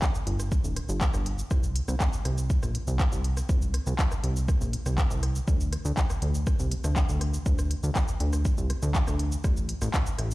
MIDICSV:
0, 0, Header, 1, 3, 480
1, 0, Start_track
1, 0, Tempo, 495868
1, 1462, Time_signature, 4, 2, 24, 8
1, 10012, End_track
2, 0, Start_track
2, 0, Title_t, "Analog synth bass"
2, 0, Program_c, 0, 38
2, 259, Note_on_c, 0, 31, 81
2, 547, Note_off_c, 0, 31, 0
2, 622, Note_on_c, 0, 26, 90
2, 768, Note_off_c, 0, 26, 0
2, 862, Note_on_c, 0, 31, 91
2, 1008, Note_off_c, 0, 31, 0
2, 1102, Note_on_c, 0, 31, 83
2, 1387, Note_off_c, 0, 31, 0
2, 1460, Note_on_c, 0, 36, 91
2, 1747, Note_off_c, 0, 36, 0
2, 1822, Note_on_c, 0, 36, 102
2, 1895, Note_off_c, 0, 36, 0
2, 2180, Note_on_c, 0, 36, 82
2, 2467, Note_off_c, 0, 36, 0
2, 2541, Note_on_c, 0, 34, 87
2, 2687, Note_off_c, 0, 34, 0
2, 2781, Note_on_c, 0, 36, 87
2, 2927, Note_off_c, 0, 36, 0
2, 3022, Note_on_c, 0, 36, 81
2, 3307, Note_off_c, 0, 36, 0
2, 3379, Note_on_c, 0, 36, 92
2, 3667, Note_off_c, 0, 36, 0
2, 3743, Note_on_c, 0, 36, 100
2, 3815, Note_off_c, 0, 36, 0
2, 4100, Note_on_c, 0, 36, 85
2, 4387, Note_off_c, 0, 36, 0
2, 4463, Note_on_c, 0, 34, 87
2, 4608, Note_off_c, 0, 34, 0
2, 4703, Note_on_c, 0, 36, 89
2, 4848, Note_off_c, 0, 36, 0
2, 4943, Note_on_c, 0, 36, 85
2, 5228, Note_off_c, 0, 36, 0
2, 5301, Note_on_c, 0, 38, 97
2, 5587, Note_off_c, 0, 38, 0
2, 5664, Note_on_c, 0, 38, 102
2, 5735, Note_off_c, 0, 38, 0
2, 6021, Note_on_c, 0, 38, 81
2, 6307, Note_off_c, 0, 38, 0
2, 6384, Note_on_c, 0, 36, 87
2, 6529, Note_off_c, 0, 36, 0
2, 6624, Note_on_c, 0, 38, 90
2, 6769, Note_off_c, 0, 38, 0
2, 6863, Note_on_c, 0, 38, 84
2, 7148, Note_off_c, 0, 38, 0
2, 7220, Note_on_c, 0, 38, 92
2, 7507, Note_off_c, 0, 38, 0
2, 7584, Note_on_c, 0, 38, 98
2, 7656, Note_off_c, 0, 38, 0
2, 7941, Note_on_c, 0, 38, 83
2, 8227, Note_off_c, 0, 38, 0
2, 8303, Note_on_c, 0, 36, 84
2, 8448, Note_off_c, 0, 36, 0
2, 8543, Note_on_c, 0, 38, 93
2, 8688, Note_off_c, 0, 38, 0
2, 8783, Note_on_c, 0, 38, 83
2, 9068, Note_off_c, 0, 38, 0
2, 9140, Note_on_c, 0, 33, 91
2, 9427, Note_off_c, 0, 33, 0
2, 9502, Note_on_c, 0, 33, 101
2, 9575, Note_off_c, 0, 33, 0
2, 9861, Note_on_c, 0, 33, 82
2, 10012, Note_off_c, 0, 33, 0
2, 10012, End_track
3, 0, Start_track
3, 0, Title_t, "Drums"
3, 20, Note_on_c, 9, 36, 114
3, 21, Note_on_c, 9, 37, 50
3, 21, Note_on_c, 9, 39, 108
3, 21, Note_on_c, 9, 82, 56
3, 117, Note_off_c, 9, 36, 0
3, 118, Note_off_c, 9, 37, 0
3, 118, Note_off_c, 9, 39, 0
3, 118, Note_off_c, 9, 82, 0
3, 143, Note_on_c, 9, 82, 57
3, 240, Note_off_c, 9, 82, 0
3, 260, Note_on_c, 9, 42, 91
3, 357, Note_off_c, 9, 42, 0
3, 383, Note_on_c, 9, 37, 47
3, 383, Note_on_c, 9, 82, 52
3, 480, Note_off_c, 9, 37, 0
3, 480, Note_off_c, 9, 82, 0
3, 500, Note_on_c, 9, 36, 115
3, 501, Note_on_c, 9, 82, 57
3, 597, Note_off_c, 9, 36, 0
3, 597, Note_off_c, 9, 82, 0
3, 623, Note_on_c, 9, 82, 53
3, 720, Note_off_c, 9, 82, 0
3, 740, Note_on_c, 9, 37, 47
3, 740, Note_on_c, 9, 42, 101
3, 837, Note_off_c, 9, 37, 0
3, 837, Note_off_c, 9, 42, 0
3, 862, Note_on_c, 9, 82, 53
3, 959, Note_off_c, 9, 82, 0
3, 979, Note_on_c, 9, 39, 101
3, 979, Note_on_c, 9, 82, 51
3, 980, Note_on_c, 9, 36, 124
3, 1076, Note_off_c, 9, 39, 0
3, 1076, Note_off_c, 9, 82, 0
3, 1077, Note_off_c, 9, 36, 0
3, 1102, Note_on_c, 9, 37, 49
3, 1102, Note_on_c, 9, 82, 56
3, 1199, Note_off_c, 9, 37, 0
3, 1199, Note_off_c, 9, 82, 0
3, 1220, Note_on_c, 9, 42, 91
3, 1317, Note_off_c, 9, 42, 0
3, 1342, Note_on_c, 9, 82, 55
3, 1439, Note_off_c, 9, 82, 0
3, 1459, Note_on_c, 9, 37, 47
3, 1459, Note_on_c, 9, 82, 50
3, 1460, Note_on_c, 9, 36, 116
3, 1556, Note_off_c, 9, 37, 0
3, 1556, Note_off_c, 9, 82, 0
3, 1557, Note_off_c, 9, 36, 0
3, 1582, Note_on_c, 9, 82, 52
3, 1679, Note_off_c, 9, 82, 0
3, 1700, Note_on_c, 9, 42, 106
3, 1796, Note_off_c, 9, 42, 0
3, 1822, Note_on_c, 9, 37, 50
3, 1822, Note_on_c, 9, 82, 54
3, 1919, Note_off_c, 9, 37, 0
3, 1919, Note_off_c, 9, 82, 0
3, 1940, Note_on_c, 9, 36, 118
3, 1941, Note_on_c, 9, 39, 104
3, 1941, Note_on_c, 9, 82, 53
3, 2036, Note_off_c, 9, 36, 0
3, 2037, Note_off_c, 9, 39, 0
3, 2037, Note_off_c, 9, 82, 0
3, 2062, Note_on_c, 9, 82, 54
3, 2159, Note_off_c, 9, 82, 0
3, 2180, Note_on_c, 9, 37, 50
3, 2180, Note_on_c, 9, 42, 90
3, 2277, Note_off_c, 9, 37, 0
3, 2277, Note_off_c, 9, 42, 0
3, 2302, Note_on_c, 9, 82, 49
3, 2399, Note_off_c, 9, 82, 0
3, 2420, Note_on_c, 9, 36, 114
3, 2421, Note_on_c, 9, 82, 52
3, 2516, Note_off_c, 9, 36, 0
3, 2517, Note_off_c, 9, 82, 0
3, 2543, Note_on_c, 9, 37, 48
3, 2543, Note_on_c, 9, 82, 51
3, 2640, Note_off_c, 9, 37, 0
3, 2640, Note_off_c, 9, 82, 0
3, 2661, Note_on_c, 9, 42, 105
3, 2757, Note_off_c, 9, 42, 0
3, 2783, Note_on_c, 9, 82, 51
3, 2880, Note_off_c, 9, 82, 0
3, 2900, Note_on_c, 9, 36, 123
3, 2900, Note_on_c, 9, 37, 47
3, 2900, Note_on_c, 9, 39, 99
3, 2900, Note_on_c, 9, 82, 49
3, 2997, Note_off_c, 9, 36, 0
3, 2997, Note_off_c, 9, 37, 0
3, 2997, Note_off_c, 9, 39, 0
3, 2997, Note_off_c, 9, 82, 0
3, 3023, Note_on_c, 9, 82, 56
3, 3120, Note_off_c, 9, 82, 0
3, 3140, Note_on_c, 9, 42, 93
3, 3237, Note_off_c, 9, 42, 0
3, 3262, Note_on_c, 9, 37, 47
3, 3262, Note_on_c, 9, 82, 53
3, 3359, Note_off_c, 9, 37, 0
3, 3359, Note_off_c, 9, 82, 0
3, 3379, Note_on_c, 9, 82, 50
3, 3380, Note_on_c, 9, 36, 124
3, 3476, Note_off_c, 9, 82, 0
3, 3477, Note_off_c, 9, 36, 0
3, 3502, Note_on_c, 9, 82, 48
3, 3599, Note_off_c, 9, 82, 0
3, 3620, Note_on_c, 9, 37, 49
3, 3620, Note_on_c, 9, 42, 101
3, 3717, Note_off_c, 9, 37, 0
3, 3717, Note_off_c, 9, 42, 0
3, 3742, Note_on_c, 9, 82, 52
3, 3839, Note_off_c, 9, 82, 0
3, 3860, Note_on_c, 9, 36, 118
3, 3860, Note_on_c, 9, 39, 107
3, 3860, Note_on_c, 9, 82, 52
3, 3957, Note_off_c, 9, 36, 0
3, 3957, Note_off_c, 9, 39, 0
3, 3957, Note_off_c, 9, 82, 0
3, 3983, Note_on_c, 9, 37, 53
3, 3983, Note_on_c, 9, 82, 51
3, 4079, Note_off_c, 9, 37, 0
3, 4079, Note_off_c, 9, 82, 0
3, 4100, Note_on_c, 9, 42, 97
3, 4197, Note_off_c, 9, 42, 0
3, 4224, Note_on_c, 9, 82, 50
3, 4321, Note_off_c, 9, 82, 0
3, 4340, Note_on_c, 9, 36, 115
3, 4342, Note_on_c, 9, 37, 54
3, 4342, Note_on_c, 9, 82, 52
3, 4437, Note_off_c, 9, 36, 0
3, 4439, Note_off_c, 9, 37, 0
3, 4439, Note_off_c, 9, 82, 0
3, 4465, Note_on_c, 9, 82, 49
3, 4562, Note_off_c, 9, 82, 0
3, 4581, Note_on_c, 9, 42, 102
3, 4678, Note_off_c, 9, 42, 0
3, 4704, Note_on_c, 9, 37, 52
3, 4704, Note_on_c, 9, 82, 49
3, 4801, Note_off_c, 9, 37, 0
3, 4801, Note_off_c, 9, 82, 0
3, 4821, Note_on_c, 9, 36, 122
3, 4822, Note_on_c, 9, 39, 97
3, 4822, Note_on_c, 9, 82, 48
3, 4917, Note_off_c, 9, 36, 0
3, 4918, Note_off_c, 9, 39, 0
3, 4918, Note_off_c, 9, 82, 0
3, 4944, Note_on_c, 9, 82, 55
3, 5041, Note_off_c, 9, 82, 0
3, 5061, Note_on_c, 9, 37, 52
3, 5061, Note_on_c, 9, 42, 94
3, 5158, Note_off_c, 9, 37, 0
3, 5158, Note_off_c, 9, 42, 0
3, 5184, Note_on_c, 9, 82, 48
3, 5280, Note_off_c, 9, 82, 0
3, 5301, Note_on_c, 9, 36, 114
3, 5303, Note_on_c, 9, 82, 52
3, 5398, Note_off_c, 9, 36, 0
3, 5399, Note_off_c, 9, 82, 0
3, 5425, Note_on_c, 9, 82, 51
3, 5522, Note_off_c, 9, 82, 0
3, 5542, Note_on_c, 9, 37, 52
3, 5542, Note_on_c, 9, 42, 101
3, 5639, Note_off_c, 9, 37, 0
3, 5639, Note_off_c, 9, 42, 0
3, 5665, Note_on_c, 9, 82, 52
3, 5762, Note_off_c, 9, 82, 0
3, 5781, Note_on_c, 9, 36, 116
3, 5783, Note_on_c, 9, 39, 100
3, 5783, Note_on_c, 9, 82, 51
3, 5878, Note_off_c, 9, 36, 0
3, 5879, Note_off_c, 9, 39, 0
3, 5879, Note_off_c, 9, 82, 0
3, 5904, Note_on_c, 9, 37, 56
3, 5904, Note_on_c, 9, 82, 53
3, 6001, Note_off_c, 9, 37, 0
3, 6001, Note_off_c, 9, 82, 0
3, 6021, Note_on_c, 9, 42, 90
3, 6118, Note_off_c, 9, 42, 0
3, 6143, Note_on_c, 9, 82, 52
3, 6240, Note_off_c, 9, 82, 0
3, 6261, Note_on_c, 9, 36, 116
3, 6261, Note_on_c, 9, 37, 55
3, 6261, Note_on_c, 9, 82, 53
3, 6358, Note_off_c, 9, 36, 0
3, 6358, Note_off_c, 9, 37, 0
3, 6358, Note_off_c, 9, 82, 0
3, 6383, Note_on_c, 9, 82, 51
3, 6480, Note_off_c, 9, 82, 0
3, 6500, Note_on_c, 9, 42, 100
3, 6597, Note_off_c, 9, 42, 0
3, 6622, Note_on_c, 9, 37, 54
3, 6622, Note_on_c, 9, 82, 53
3, 6719, Note_off_c, 9, 37, 0
3, 6719, Note_off_c, 9, 82, 0
3, 6740, Note_on_c, 9, 39, 93
3, 6740, Note_on_c, 9, 82, 49
3, 6741, Note_on_c, 9, 36, 118
3, 6837, Note_off_c, 9, 39, 0
3, 6837, Note_off_c, 9, 82, 0
3, 6838, Note_off_c, 9, 36, 0
3, 6862, Note_on_c, 9, 82, 53
3, 6959, Note_off_c, 9, 82, 0
3, 6980, Note_on_c, 9, 37, 54
3, 6980, Note_on_c, 9, 42, 89
3, 7076, Note_off_c, 9, 37, 0
3, 7076, Note_off_c, 9, 42, 0
3, 7103, Note_on_c, 9, 82, 51
3, 7199, Note_off_c, 9, 82, 0
3, 7221, Note_on_c, 9, 36, 116
3, 7221, Note_on_c, 9, 82, 52
3, 7318, Note_off_c, 9, 36, 0
3, 7318, Note_off_c, 9, 82, 0
3, 7343, Note_on_c, 9, 37, 52
3, 7343, Note_on_c, 9, 82, 51
3, 7440, Note_off_c, 9, 37, 0
3, 7440, Note_off_c, 9, 82, 0
3, 7460, Note_on_c, 9, 42, 95
3, 7557, Note_off_c, 9, 42, 0
3, 7583, Note_on_c, 9, 82, 56
3, 7680, Note_off_c, 9, 82, 0
3, 7700, Note_on_c, 9, 37, 56
3, 7700, Note_on_c, 9, 39, 98
3, 7700, Note_on_c, 9, 82, 56
3, 7701, Note_on_c, 9, 36, 108
3, 7797, Note_off_c, 9, 37, 0
3, 7797, Note_off_c, 9, 39, 0
3, 7797, Note_off_c, 9, 82, 0
3, 7798, Note_off_c, 9, 36, 0
3, 7822, Note_on_c, 9, 82, 58
3, 7919, Note_off_c, 9, 82, 0
3, 7940, Note_on_c, 9, 42, 86
3, 8037, Note_off_c, 9, 42, 0
3, 8062, Note_on_c, 9, 37, 52
3, 8062, Note_on_c, 9, 82, 50
3, 8159, Note_off_c, 9, 37, 0
3, 8159, Note_off_c, 9, 82, 0
3, 8179, Note_on_c, 9, 82, 54
3, 8181, Note_on_c, 9, 36, 115
3, 8276, Note_off_c, 9, 82, 0
3, 8278, Note_off_c, 9, 36, 0
3, 8302, Note_on_c, 9, 82, 52
3, 8399, Note_off_c, 9, 82, 0
3, 8421, Note_on_c, 9, 37, 52
3, 8421, Note_on_c, 9, 42, 98
3, 8518, Note_off_c, 9, 37, 0
3, 8518, Note_off_c, 9, 42, 0
3, 8543, Note_on_c, 9, 82, 52
3, 8639, Note_off_c, 9, 82, 0
3, 8661, Note_on_c, 9, 36, 115
3, 8661, Note_on_c, 9, 39, 92
3, 8661, Note_on_c, 9, 82, 51
3, 8758, Note_off_c, 9, 36, 0
3, 8758, Note_off_c, 9, 39, 0
3, 8758, Note_off_c, 9, 82, 0
3, 8782, Note_on_c, 9, 37, 54
3, 8782, Note_on_c, 9, 82, 55
3, 8879, Note_off_c, 9, 37, 0
3, 8879, Note_off_c, 9, 82, 0
3, 8900, Note_on_c, 9, 42, 87
3, 8996, Note_off_c, 9, 42, 0
3, 9022, Note_on_c, 9, 82, 52
3, 9119, Note_off_c, 9, 82, 0
3, 9140, Note_on_c, 9, 37, 52
3, 9140, Note_on_c, 9, 82, 56
3, 9141, Note_on_c, 9, 36, 116
3, 9236, Note_off_c, 9, 37, 0
3, 9236, Note_off_c, 9, 82, 0
3, 9237, Note_off_c, 9, 36, 0
3, 9262, Note_on_c, 9, 82, 55
3, 9359, Note_off_c, 9, 82, 0
3, 9379, Note_on_c, 9, 42, 98
3, 9475, Note_off_c, 9, 42, 0
3, 9502, Note_on_c, 9, 37, 56
3, 9502, Note_on_c, 9, 82, 57
3, 9599, Note_off_c, 9, 37, 0
3, 9599, Note_off_c, 9, 82, 0
3, 9620, Note_on_c, 9, 39, 100
3, 9620, Note_on_c, 9, 82, 58
3, 9621, Note_on_c, 9, 36, 106
3, 9717, Note_off_c, 9, 36, 0
3, 9717, Note_off_c, 9, 39, 0
3, 9717, Note_off_c, 9, 82, 0
3, 9742, Note_on_c, 9, 82, 57
3, 9839, Note_off_c, 9, 82, 0
3, 9859, Note_on_c, 9, 37, 54
3, 9859, Note_on_c, 9, 42, 89
3, 9956, Note_off_c, 9, 37, 0
3, 9956, Note_off_c, 9, 42, 0
3, 9981, Note_on_c, 9, 82, 53
3, 10012, Note_off_c, 9, 82, 0
3, 10012, End_track
0, 0, End_of_file